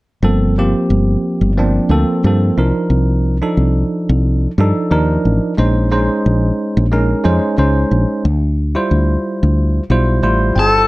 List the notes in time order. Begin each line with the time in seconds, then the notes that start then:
0.22 G1 F3 A#3 C4 A4
0.58 F3 A#3 C4 G4
0.90 G1
1.41 G1
1.57 F3 A#3 C4 D4
1.89 D2 F3 A#3 C4 A4
2.24 G2 F3 A#3 C4 A4
2.57 C2 F3 D4 D#4 A#4
2.90 C2
3.42 F3 D4 D#4 A4
3.57 C2
4.09 C2
4.58 G2 F3 D4 D#4 A4
4.91 D#2 F3 D4 D#4 A#4
5.25 A1
5.57 A#1 G#3 C#4 D#4 C5
5.91 G#3 C#4 D#4 C5
6.26 A#1
6.77 A#1
6.92 G#3 C#4 D#4 A#4
7.24 F2 G#3 C#4 D#4 C5
7.58 C#2 G#3 C#4 D#4 C5
7.91 A#1
8.25 D2
8.75 G3 E4 F4 C5
8.91 D2
9.43 D2
9.90 B1 G3 E4 F4 C5
10.23 A1 G3 E4 F4 C5
10.56 G1 A4 G5 A5